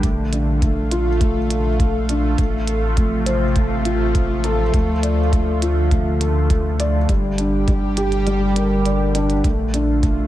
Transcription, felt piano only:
0.03 A3
0.33 D4
0.62 A3
0.92 F4
1.21 A3
1.50 A4
1.79 A3
2.09 D4
2.39 A3
2.68 A4
2.97 A3
3.26 C5
3.56 A3
3.85 F4
4.15 A3
4.44 A4
4.74 A3
5.03 D5
5.32 A3
5.62 F4
5.91 A3
6.21 A4
6.50 A3
6.80 D5
7.09 G3
7.39 D4
7.68 G3
7.97 G4
8.27 G3
8.56 A#4
8.86 D5
9.15 D4
9.44 A3
9.74 D4
10.03 A3

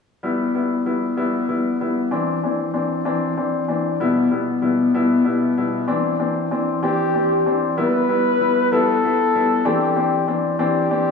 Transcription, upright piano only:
0.23 G3 B3 E4
0.55 G3 B3 E4
0.85 G3 B3 E4
1.17 G3 B3 E4
1.49 G3 B3 E4
1.80 G3 B3 E4
2.11 E3 C4 D4
2.44 E3 C4 D4
2.74 E3 C4 D4
3.05 E3 C4 D4
3.37 E3 C4 D4
3.68 E3 C4 D4
4.00 B2 G3 B3 E4
4.31 B2 G3 B3 E4
4.62 B2 G3 B3 E4
4.94 B2 G3 B3 E4
5.24 B2 G3 B3 E4
5.58 B2 G3 B3 E4
5.88 E3 C4 D4
6.19 E3 C4 D4
6.51 E3 C4 D4
6.83 E3 C4 D4
7.14 E3 C4 D4
7.46 E3 C4 D4
7.77 G3 B3 E4
8.09 G3 B3 E4
8.40 G3 B3 E4
8.72 G3 B3 E4
9.05 B3 E4
9.35 G3 B3 E4
9.65 E3 C4 D4
9.96 E3 C4 D4
10.27 E3 C4 D4
10.59 E3 C4 D4
10.91 E3 C4 D4

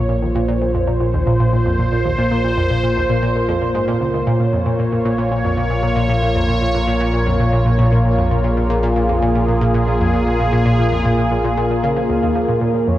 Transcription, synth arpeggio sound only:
0.09 A#2
0.22 D#2
0.35 A#2
0.48 A#2
0.62 A#2
0.75 F2
0.88 A#2
1.01 A#2
1.14 D#2
1.27 A#2
1.40 A#2
1.53 A#2
1.66 F2
1.79 A#2
1.92 A#2
2.05 D#2
2.18 A#2
2.31 A#2
2.44 A#2
2.57 F2
2.70 A#2
2.83 A#2
2.97 D#2
3.09 A#2
3.23 A#2
3.35 A#2
3.49 F2
3.61 A#2
3.75 G#2
3.88 A#2
4.01 C#2
4.14 C#2
4.27 A#2
4.40 A#2
4.53 F2
4.66 A#2
4.79 A#2
4.92 A#2
5.05 A#2
5.18 A#2
5.31 A#2
5.44 F2
5.57 A#2
5.70 A#2
5.83 A#2
5.96 A#2
6.09 A#2
6.22 A#2
6.35 F2
6.48 A#2
6.61 A#2
6.74 A#2
6.87 A#2
7.00 A#2
7.14 A#2
7.26 F2
7.40 A#2
7.53 A#2
7.66 A#2
7.79 A#2
7.92 A#2
8.05 A#2
8.18 F2
8.31 A#2
8.44 A#2
8.57 A#2
8.70 A#2
8.83 A#2
8.96 A#2
9.09 F2
9.22 A#2
9.35 A#2
9.48 A#2
9.62 A#2
9.74 A#2
9.88 A#2
10.01 F2
10.13 A#2
10.27 A#2
10.40 A#2
10.53 A#2
10.66 A#2
10.79 A#2
10.92 F2
11.05 A#2
11.18 A#2
11.31 A#2
11.44 A#2
11.57 A#2
11.70 A#2
11.83 C#3
11.96 F3
12.10 C#2
12.22 D#2
12.35 F3
12.49 A#2
12.62 A#2
12.74 A#2
12.88 F2

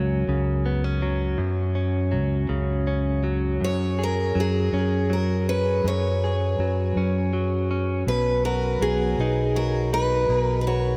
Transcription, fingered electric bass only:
Already playing: C#2
0.27 C#2
1.38 F#2
2.12 C#2
2.49 C#2
3.61 F#2
4.35 F#2
4.72 F#2
5.84 F#2
6.58 F#2
6.96 F#2
8.06 B1
8.80 B1
9.18 B1
10.29 B1

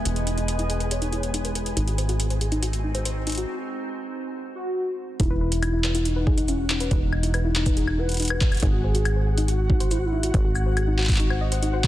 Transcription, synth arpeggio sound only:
0.05 B4
0.27 D#4
0.38 E4
0.48 B4
0.59 E4
0.80 B4
0.91 G#4
1.02 D#4
1.13 E4
1.34 D#4
1.45 B4
1.55 B4
1.77 D#4
1.88 F#4
1.98 C5
2.09 F#4
2.30 C5
2.41 G#4
2.52 D#4
2.63 F#4
2.84 D#4
2.95 C5
3.05 C5
3.27 D#4
3.38 F#4
5.20 D#4
5.30 B4
5.41 B4
5.63 D#4
5.73 E4
5.84 B4
5.95 E4
6.16 B4
6.27 G#4
6.38 D#4
6.48 E4
6.70 D#4
6.80 B4
6.91 B4
7.13 D#4
7.23 E4
7.34 B4
7.45 E4
7.66 B4
7.77 G#4
7.88 D#4
7.98 E4
8.20 D#4
8.30 B4
8.41 B4
8.63 D#4
8.73 F#4
8.84 C5
8.95 F#4
9.16 C5
9.27 G#4
9.38 D#4
9.48 F#4
9.70 D#4
9.80 C5
9.91 C5
10.13 D#4
10.23 F#4
10.34 C5
10.45 F#4
10.66 C5
10.77 G#4
10.88 D#4
10.98 F#4
11.20 D#4
11.30 C5
11.41 D#5
11.52 C5
11.63 D#4
11.73 C5
11.84 C5

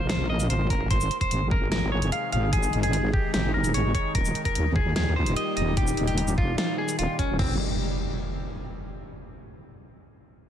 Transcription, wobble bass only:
Already playing: A#1
0.20 A#1
0.50 G#1
0.91 G#1
1.31 G#1
1.72 G#1
2.32 G#1
2.73 G#1
3.34 G#1
3.74 G#1
4.15 D#1
4.55 D#2
4.96 D#2
5.57 D#1
5.97 D#1
6.38 F1
6.99 D#1
7.29 D#1
7.39 F1

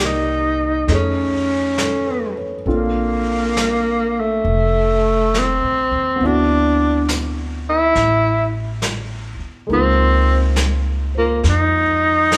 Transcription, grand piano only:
Already playing: A#3 D#4 G4 D5
0.87 A3 C#4 D#4
0.92 G#4
1.79 A4
2.07 B4
2.37 C#5
2.67 C4 D4 F4 A4
6.16 B3 C4
6.23 E4 F#4
9.67 G#3 A#3 D#4
9.73 F4
11.15 F4 C5

